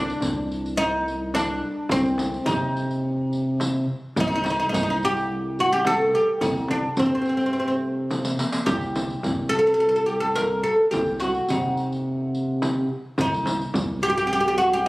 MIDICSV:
0, 0, Header, 1, 6, 480
1, 0, Start_track
1, 0, Tempo, 562852
1, 1635, Time_signature, 4, 2, 24, 8
1, 12691, End_track
2, 0, Start_track
2, 0, Title_t, "Oud"
2, 0, Program_c, 0, 24
2, 0, Note_on_c, 0, 62, 88
2, 657, Note_off_c, 0, 62, 0
2, 661, Note_on_c, 0, 63, 102
2, 1145, Note_off_c, 0, 63, 0
2, 1148, Note_on_c, 0, 62, 95
2, 1635, Note_on_c, 0, 60, 86
2, 1646, Note_off_c, 0, 62, 0
2, 2098, Note_on_c, 0, 63, 84
2, 2129, Note_off_c, 0, 60, 0
2, 3272, Note_off_c, 0, 63, 0
2, 3583, Note_on_c, 0, 63, 83
2, 3635, Note_off_c, 0, 63, 0
2, 3647, Note_on_c, 0, 63, 57
2, 3699, Note_off_c, 0, 63, 0
2, 3715, Note_on_c, 0, 63, 70
2, 3765, Note_off_c, 0, 63, 0
2, 3784, Note_on_c, 0, 63, 50
2, 3831, Note_off_c, 0, 63, 0
2, 3841, Note_on_c, 0, 63, 63
2, 3892, Note_off_c, 0, 63, 0
2, 3919, Note_on_c, 0, 63, 56
2, 3963, Note_off_c, 0, 63, 0
2, 4002, Note_on_c, 0, 63, 60
2, 4035, Note_off_c, 0, 63, 0
2, 4045, Note_on_c, 0, 63, 58
2, 4090, Note_off_c, 0, 63, 0
2, 4120, Note_on_c, 0, 63, 57
2, 4160, Note_off_c, 0, 63, 0
2, 4180, Note_on_c, 0, 63, 60
2, 4222, Note_off_c, 0, 63, 0
2, 4305, Note_on_c, 0, 67, 100
2, 4774, Note_off_c, 0, 67, 0
2, 4777, Note_on_c, 0, 66, 85
2, 4879, Note_off_c, 0, 66, 0
2, 4883, Note_on_c, 0, 67, 93
2, 5001, Note_off_c, 0, 67, 0
2, 5005, Note_on_c, 0, 69, 110
2, 5240, Note_off_c, 0, 69, 0
2, 5243, Note_on_c, 0, 67, 82
2, 5469, Note_on_c, 0, 63, 86
2, 5487, Note_off_c, 0, 67, 0
2, 5696, Note_off_c, 0, 63, 0
2, 5719, Note_on_c, 0, 62, 90
2, 5965, Note_off_c, 0, 62, 0
2, 5965, Note_on_c, 0, 60, 68
2, 6008, Note_off_c, 0, 60, 0
2, 6019, Note_on_c, 0, 60, 45
2, 6080, Note_off_c, 0, 60, 0
2, 6096, Note_on_c, 0, 60, 51
2, 6144, Note_off_c, 0, 60, 0
2, 6154, Note_on_c, 0, 60, 41
2, 6208, Note_off_c, 0, 60, 0
2, 6219, Note_on_c, 0, 60, 49
2, 6276, Note_off_c, 0, 60, 0
2, 6286, Note_on_c, 0, 60, 47
2, 6342, Note_off_c, 0, 60, 0
2, 6362, Note_on_c, 0, 60, 47
2, 6413, Note_off_c, 0, 60, 0
2, 6421, Note_on_c, 0, 60, 45
2, 6468, Note_off_c, 0, 60, 0
2, 6478, Note_on_c, 0, 60, 51
2, 6534, Note_off_c, 0, 60, 0
2, 6546, Note_on_c, 0, 60, 51
2, 6601, Note_off_c, 0, 60, 0
2, 7387, Note_on_c, 0, 67, 76
2, 8092, Note_off_c, 0, 67, 0
2, 8096, Note_on_c, 0, 69, 96
2, 8166, Note_off_c, 0, 69, 0
2, 8176, Note_on_c, 0, 69, 66
2, 8236, Note_off_c, 0, 69, 0
2, 8246, Note_on_c, 0, 69, 72
2, 8296, Note_off_c, 0, 69, 0
2, 8306, Note_on_c, 0, 69, 71
2, 8349, Note_off_c, 0, 69, 0
2, 8360, Note_on_c, 0, 69, 73
2, 8422, Note_off_c, 0, 69, 0
2, 8432, Note_on_c, 0, 69, 68
2, 8483, Note_off_c, 0, 69, 0
2, 8493, Note_on_c, 0, 69, 71
2, 8558, Note_off_c, 0, 69, 0
2, 8580, Note_on_c, 0, 67, 71
2, 8698, Note_off_c, 0, 67, 0
2, 8702, Note_on_c, 0, 69, 88
2, 8827, Note_off_c, 0, 69, 0
2, 8831, Note_on_c, 0, 70, 101
2, 9066, Note_off_c, 0, 70, 0
2, 9070, Note_on_c, 0, 69, 83
2, 9298, Note_off_c, 0, 69, 0
2, 9304, Note_on_c, 0, 67, 80
2, 9549, Note_off_c, 0, 67, 0
2, 9552, Note_on_c, 0, 66, 85
2, 9804, Note_off_c, 0, 66, 0
2, 9809, Note_on_c, 0, 63, 72
2, 10491, Note_off_c, 0, 63, 0
2, 11263, Note_on_c, 0, 63, 89
2, 11960, Note_off_c, 0, 63, 0
2, 11964, Note_on_c, 0, 67, 100
2, 12012, Note_off_c, 0, 67, 0
2, 12022, Note_on_c, 0, 67, 70
2, 12079, Note_off_c, 0, 67, 0
2, 12089, Note_on_c, 0, 67, 81
2, 12155, Note_off_c, 0, 67, 0
2, 12169, Note_on_c, 0, 67, 75
2, 12208, Note_off_c, 0, 67, 0
2, 12218, Note_on_c, 0, 67, 84
2, 12273, Note_off_c, 0, 67, 0
2, 12283, Note_on_c, 0, 67, 74
2, 12337, Note_off_c, 0, 67, 0
2, 12347, Note_on_c, 0, 67, 84
2, 12413, Note_off_c, 0, 67, 0
2, 12432, Note_on_c, 0, 66, 93
2, 12560, Note_off_c, 0, 66, 0
2, 12565, Note_on_c, 0, 67, 98
2, 12670, Note_off_c, 0, 67, 0
2, 12691, End_track
3, 0, Start_track
3, 0, Title_t, "Analog synth bass"
3, 0, Program_c, 1, 38
3, 0, Note_on_c, 1, 36, 90
3, 110, Note_off_c, 1, 36, 0
3, 200, Note_on_c, 1, 36, 86
3, 1380, Note_off_c, 1, 36, 0
3, 1631, Note_on_c, 1, 36, 112
3, 2027, Note_off_c, 1, 36, 0
3, 2110, Note_on_c, 1, 48, 80
3, 3294, Note_off_c, 1, 48, 0
3, 3562, Note_on_c, 1, 36, 87
3, 3953, Note_off_c, 1, 36, 0
3, 4031, Note_on_c, 1, 36, 97
3, 5215, Note_off_c, 1, 36, 0
3, 5466, Note_on_c, 1, 36, 110
3, 5865, Note_off_c, 1, 36, 0
3, 5955, Note_on_c, 1, 48, 88
3, 7139, Note_off_c, 1, 48, 0
3, 7399, Note_on_c, 1, 36, 101
3, 7793, Note_off_c, 1, 36, 0
3, 7885, Note_on_c, 1, 36, 90
3, 9066, Note_off_c, 1, 36, 0
3, 9321, Note_on_c, 1, 36, 105
3, 9715, Note_off_c, 1, 36, 0
3, 9807, Note_on_c, 1, 48, 92
3, 10987, Note_off_c, 1, 48, 0
3, 11238, Note_on_c, 1, 36, 84
3, 11633, Note_off_c, 1, 36, 0
3, 11729, Note_on_c, 1, 36, 89
3, 12691, Note_off_c, 1, 36, 0
3, 12691, End_track
4, 0, Start_track
4, 0, Title_t, "Darbuka"
4, 61, Note_on_c, 9, 62, 25
4, 146, Note_off_c, 9, 62, 0
4, 173, Note_on_c, 9, 64, 74
4, 259, Note_off_c, 9, 64, 0
4, 416, Note_on_c, 9, 62, 22
4, 502, Note_off_c, 9, 62, 0
4, 543, Note_on_c, 9, 62, 23
4, 629, Note_off_c, 9, 62, 0
4, 1153, Note_on_c, 9, 63, 68
4, 1238, Note_off_c, 9, 63, 0
4, 1511, Note_on_c, 9, 62, 24
4, 1597, Note_off_c, 9, 62, 0
4, 1633, Note_on_c, 9, 64, 77
4, 1718, Note_off_c, 9, 64, 0
4, 1743, Note_on_c, 9, 62, 25
4, 1829, Note_off_c, 9, 62, 0
4, 1872, Note_on_c, 9, 63, 56
4, 1957, Note_off_c, 9, 63, 0
4, 1987, Note_on_c, 9, 62, 26
4, 2073, Note_off_c, 9, 62, 0
4, 2099, Note_on_c, 9, 64, 74
4, 2185, Note_off_c, 9, 64, 0
4, 2468, Note_on_c, 9, 62, 27
4, 2554, Note_off_c, 9, 62, 0
4, 2707, Note_on_c, 9, 62, 28
4, 2792, Note_off_c, 9, 62, 0
4, 2830, Note_on_c, 9, 62, 25
4, 2916, Note_off_c, 9, 62, 0
4, 3074, Note_on_c, 9, 63, 74
4, 3159, Note_off_c, 9, 63, 0
4, 3432, Note_on_c, 9, 62, 26
4, 3517, Note_off_c, 9, 62, 0
4, 3560, Note_on_c, 9, 64, 87
4, 3645, Note_off_c, 9, 64, 0
4, 3683, Note_on_c, 9, 62, 31
4, 3768, Note_off_c, 9, 62, 0
4, 3805, Note_on_c, 9, 63, 62
4, 3890, Note_off_c, 9, 63, 0
4, 3925, Note_on_c, 9, 62, 30
4, 4010, Note_off_c, 9, 62, 0
4, 4039, Note_on_c, 9, 64, 80
4, 4124, Note_off_c, 9, 64, 0
4, 4273, Note_on_c, 9, 62, 25
4, 4358, Note_off_c, 9, 62, 0
4, 4403, Note_on_c, 9, 62, 27
4, 4488, Note_off_c, 9, 62, 0
4, 4637, Note_on_c, 9, 62, 24
4, 4722, Note_off_c, 9, 62, 0
4, 4752, Note_on_c, 9, 62, 26
4, 4837, Note_off_c, 9, 62, 0
4, 4991, Note_on_c, 9, 63, 66
4, 5076, Note_off_c, 9, 63, 0
4, 5353, Note_on_c, 9, 62, 25
4, 5438, Note_off_c, 9, 62, 0
4, 5464, Note_on_c, 9, 64, 81
4, 5549, Note_off_c, 9, 64, 0
4, 5843, Note_on_c, 9, 62, 24
4, 5928, Note_off_c, 9, 62, 0
4, 5961, Note_on_c, 9, 64, 85
4, 6047, Note_off_c, 9, 64, 0
4, 6090, Note_on_c, 9, 62, 24
4, 6175, Note_off_c, 9, 62, 0
4, 6198, Note_on_c, 9, 62, 20
4, 6284, Note_off_c, 9, 62, 0
4, 6328, Note_on_c, 9, 62, 23
4, 6413, Note_off_c, 9, 62, 0
4, 6558, Note_on_c, 9, 62, 27
4, 6643, Note_off_c, 9, 62, 0
4, 6687, Note_on_c, 9, 62, 26
4, 6773, Note_off_c, 9, 62, 0
4, 6926, Note_on_c, 9, 63, 61
4, 7011, Note_off_c, 9, 63, 0
4, 7049, Note_on_c, 9, 62, 52
4, 7135, Note_off_c, 9, 62, 0
4, 7166, Note_on_c, 9, 63, 71
4, 7252, Note_off_c, 9, 63, 0
4, 7289, Note_on_c, 9, 62, 75
4, 7374, Note_off_c, 9, 62, 0
4, 7413, Note_on_c, 9, 64, 97
4, 7498, Note_off_c, 9, 64, 0
4, 7536, Note_on_c, 9, 62, 29
4, 7621, Note_off_c, 9, 62, 0
4, 7647, Note_on_c, 9, 63, 67
4, 7732, Note_off_c, 9, 63, 0
4, 7775, Note_on_c, 9, 62, 26
4, 7861, Note_off_c, 9, 62, 0
4, 7897, Note_on_c, 9, 64, 90
4, 7982, Note_off_c, 9, 64, 0
4, 8134, Note_on_c, 9, 62, 22
4, 8219, Note_off_c, 9, 62, 0
4, 8493, Note_on_c, 9, 62, 25
4, 8579, Note_off_c, 9, 62, 0
4, 8850, Note_on_c, 9, 63, 72
4, 8935, Note_off_c, 9, 63, 0
4, 9210, Note_on_c, 9, 62, 21
4, 9295, Note_off_c, 9, 62, 0
4, 9331, Note_on_c, 9, 64, 90
4, 9416, Note_off_c, 9, 64, 0
4, 9463, Note_on_c, 9, 62, 25
4, 9549, Note_off_c, 9, 62, 0
4, 9581, Note_on_c, 9, 63, 67
4, 9667, Note_off_c, 9, 63, 0
4, 9704, Note_on_c, 9, 62, 26
4, 9790, Note_off_c, 9, 62, 0
4, 9814, Note_on_c, 9, 64, 81
4, 9900, Note_off_c, 9, 64, 0
4, 10063, Note_on_c, 9, 62, 22
4, 10149, Note_off_c, 9, 62, 0
4, 10183, Note_on_c, 9, 62, 25
4, 10268, Note_off_c, 9, 62, 0
4, 10419, Note_on_c, 9, 62, 24
4, 10504, Note_off_c, 9, 62, 0
4, 10535, Note_on_c, 9, 62, 25
4, 10620, Note_off_c, 9, 62, 0
4, 10764, Note_on_c, 9, 63, 74
4, 10849, Note_off_c, 9, 63, 0
4, 11130, Note_on_c, 9, 62, 24
4, 11215, Note_off_c, 9, 62, 0
4, 11247, Note_on_c, 9, 64, 98
4, 11333, Note_off_c, 9, 64, 0
4, 11367, Note_on_c, 9, 62, 24
4, 11452, Note_off_c, 9, 62, 0
4, 11490, Note_on_c, 9, 63, 70
4, 11575, Note_off_c, 9, 63, 0
4, 11617, Note_on_c, 9, 62, 24
4, 11703, Note_off_c, 9, 62, 0
4, 11729, Note_on_c, 9, 64, 85
4, 11814, Note_off_c, 9, 64, 0
4, 11966, Note_on_c, 9, 62, 21
4, 12052, Note_off_c, 9, 62, 0
4, 12691, End_track
5, 0, Start_track
5, 0, Title_t, "Frame drum"
5, 184, Note_on_c, 9, 64, 70
5, 270, Note_off_c, 9, 64, 0
5, 1143, Note_on_c, 9, 64, 61
5, 1228, Note_off_c, 9, 64, 0
5, 1614, Note_on_c, 9, 64, 87
5, 1700, Note_off_c, 9, 64, 0
5, 1859, Note_on_c, 9, 64, 73
5, 1944, Note_off_c, 9, 64, 0
5, 2095, Note_on_c, 9, 64, 78
5, 2180, Note_off_c, 9, 64, 0
5, 3070, Note_on_c, 9, 64, 63
5, 3155, Note_off_c, 9, 64, 0
5, 3551, Note_on_c, 9, 64, 83
5, 3636, Note_off_c, 9, 64, 0
5, 3793, Note_on_c, 9, 64, 74
5, 3878, Note_off_c, 9, 64, 0
5, 4029, Note_on_c, 9, 64, 72
5, 4115, Note_off_c, 9, 64, 0
5, 4987, Note_on_c, 9, 64, 74
5, 5072, Note_off_c, 9, 64, 0
5, 5467, Note_on_c, 9, 64, 103
5, 5552, Note_off_c, 9, 64, 0
5, 5701, Note_on_c, 9, 64, 66
5, 5787, Note_off_c, 9, 64, 0
5, 5944, Note_on_c, 9, 64, 84
5, 6030, Note_off_c, 9, 64, 0
5, 6913, Note_on_c, 9, 64, 71
5, 6998, Note_off_c, 9, 64, 0
5, 7390, Note_on_c, 9, 64, 108
5, 7475, Note_off_c, 9, 64, 0
5, 7639, Note_on_c, 9, 64, 80
5, 7725, Note_off_c, 9, 64, 0
5, 7874, Note_on_c, 9, 64, 86
5, 7959, Note_off_c, 9, 64, 0
5, 8837, Note_on_c, 9, 64, 62
5, 8922, Note_off_c, 9, 64, 0
5, 9326, Note_on_c, 9, 64, 97
5, 9411, Note_off_c, 9, 64, 0
5, 9569, Note_on_c, 9, 64, 64
5, 9654, Note_off_c, 9, 64, 0
5, 9809, Note_on_c, 9, 64, 84
5, 9894, Note_off_c, 9, 64, 0
5, 10763, Note_on_c, 9, 64, 70
5, 10848, Note_off_c, 9, 64, 0
5, 11238, Note_on_c, 9, 64, 104
5, 11323, Note_off_c, 9, 64, 0
5, 11476, Note_on_c, 9, 64, 75
5, 11561, Note_off_c, 9, 64, 0
5, 11716, Note_on_c, 9, 64, 101
5, 11802, Note_off_c, 9, 64, 0
5, 12691, End_track
6, 0, Start_track
6, 0, Title_t, "Riq"
6, 82, Note_on_c, 9, 54, 20
6, 167, Note_off_c, 9, 54, 0
6, 189, Note_on_c, 9, 54, 62
6, 275, Note_off_c, 9, 54, 0
6, 440, Note_on_c, 9, 54, 18
6, 525, Note_off_c, 9, 54, 0
6, 561, Note_on_c, 9, 54, 17
6, 646, Note_off_c, 9, 54, 0
6, 921, Note_on_c, 9, 54, 19
6, 1007, Note_off_c, 9, 54, 0
6, 1161, Note_on_c, 9, 54, 50
6, 1246, Note_off_c, 9, 54, 0
6, 1631, Note_on_c, 9, 54, 59
6, 1716, Note_off_c, 9, 54, 0
6, 1753, Note_on_c, 9, 54, 19
6, 1838, Note_off_c, 9, 54, 0
6, 1868, Note_on_c, 9, 54, 51
6, 1954, Note_off_c, 9, 54, 0
6, 1995, Note_on_c, 9, 54, 18
6, 2080, Note_off_c, 9, 54, 0
6, 2109, Note_on_c, 9, 54, 64
6, 2194, Note_off_c, 9, 54, 0
6, 2358, Note_on_c, 9, 54, 18
6, 2443, Note_off_c, 9, 54, 0
6, 2480, Note_on_c, 9, 54, 18
6, 2565, Note_off_c, 9, 54, 0
6, 2838, Note_on_c, 9, 54, 19
6, 2923, Note_off_c, 9, 54, 0
6, 3076, Note_on_c, 9, 54, 49
6, 3162, Note_off_c, 9, 54, 0
6, 3557, Note_on_c, 9, 54, 61
6, 3642, Note_off_c, 9, 54, 0
6, 3686, Note_on_c, 9, 54, 18
6, 3772, Note_off_c, 9, 54, 0
6, 3802, Note_on_c, 9, 54, 51
6, 3887, Note_off_c, 9, 54, 0
6, 3923, Note_on_c, 9, 54, 18
6, 4008, Note_off_c, 9, 54, 0
6, 4045, Note_on_c, 9, 54, 66
6, 4130, Note_off_c, 9, 54, 0
6, 4286, Note_on_c, 9, 54, 17
6, 4371, Note_off_c, 9, 54, 0
6, 4407, Note_on_c, 9, 54, 17
6, 4492, Note_off_c, 9, 54, 0
6, 4767, Note_on_c, 9, 54, 17
6, 4852, Note_off_c, 9, 54, 0
6, 5001, Note_on_c, 9, 54, 46
6, 5086, Note_off_c, 9, 54, 0
6, 5476, Note_on_c, 9, 54, 62
6, 5561, Note_off_c, 9, 54, 0
6, 5591, Note_on_c, 9, 54, 16
6, 5677, Note_off_c, 9, 54, 0
6, 5942, Note_on_c, 9, 54, 55
6, 6028, Note_off_c, 9, 54, 0
6, 6186, Note_on_c, 9, 54, 18
6, 6271, Note_off_c, 9, 54, 0
6, 6309, Note_on_c, 9, 54, 16
6, 6394, Note_off_c, 9, 54, 0
6, 6426, Note_on_c, 9, 54, 16
6, 6511, Note_off_c, 9, 54, 0
6, 6549, Note_on_c, 9, 54, 16
6, 6634, Note_off_c, 9, 54, 0
6, 6917, Note_on_c, 9, 54, 50
6, 7002, Note_off_c, 9, 54, 0
6, 7033, Note_on_c, 9, 54, 67
6, 7119, Note_off_c, 9, 54, 0
6, 7155, Note_on_c, 9, 54, 75
6, 7241, Note_off_c, 9, 54, 0
6, 7270, Note_on_c, 9, 54, 92
6, 7355, Note_off_c, 9, 54, 0
6, 7391, Note_on_c, 9, 54, 66
6, 7477, Note_off_c, 9, 54, 0
6, 7513, Note_on_c, 9, 54, 17
6, 7599, Note_off_c, 9, 54, 0
6, 7636, Note_on_c, 9, 54, 51
6, 7722, Note_off_c, 9, 54, 0
6, 7762, Note_on_c, 9, 54, 19
6, 7847, Note_off_c, 9, 54, 0
6, 7881, Note_on_c, 9, 54, 56
6, 7966, Note_off_c, 9, 54, 0
6, 8116, Note_on_c, 9, 54, 18
6, 8202, Note_off_c, 9, 54, 0
6, 8238, Note_on_c, 9, 54, 17
6, 8323, Note_off_c, 9, 54, 0
6, 8598, Note_on_c, 9, 54, 18
6, 8684, Note_off_c, 9, 54, 0
6, 8836, Note_on_c, 9, 54, 51
6, 8921, Note_off_c, 9, 54, 0
6, 9315, Note_on_c, 9, 54, 53
6, 9400, Note_off_c, 9, 54, 0
6, 9433, Note_on_c, 9, 54, 17
6, 9518, Note_off_c, 9, 54, 0
6, 9548, Note_on_c, 9, 54, 51
6, 9633, Note_off_c, 9, 54, 0
6, 9676, Note_on_c, 9, 54, 19
6, 9761, Note_off_c, 9, 54, 0
6, 9794, Note_on_c, 9, 54, 53
6, 9879, Note_off_c, 9, 54, 0
6, 10040, Note_on_c, 9, 54, 18
6, 10125, Note_off_c, 9, 54, 0
6, 10169, Note_on_c, 9, 54, 17
6, 10254, Note_off_c, 9, 54, 0
6, 10528, Note_on_c, 9, 54, 21
6, 10614, Note_off_c, 9, 54, 0
6, 10768, Note_on_c, 9, 54, 46
6, 10853, Note_off_c, 9, 54, 0
6, 11246, Note_on_c, 9, 54, 49
6, 11331, Note_off_c, 9, 54, 0
6, 11379, Note_on_c, 9, 54, 19
6, 11464, Note_off_c, 9, 54, 0
6, 11486, Note_on_c, 9, 54, 51
6, 11571, Note_off_c, 9, 54, 0
6, 11611, Note_on_c, 9, 54, 20
6, 11696, Note_off_c, 9, 54, 0
6, 11730, Note_on_c, 9, 54, 55
6, 11815, Note_off_c, 9, 54, 0
6, 11967, Note_on_c, 9, 54, 19
6, 12052, Note_off_c, 9, 54, 0
6, 12092, Note_on_c, 9, 54, 18
6, 12177, Note_off_c, 9, 54, 0
6, 12454, Note_on_c, 9, 54, 18
6, 12539, Note_off_c, 9, 54, 0
6, 12691, End_track
0, 0, End_of_file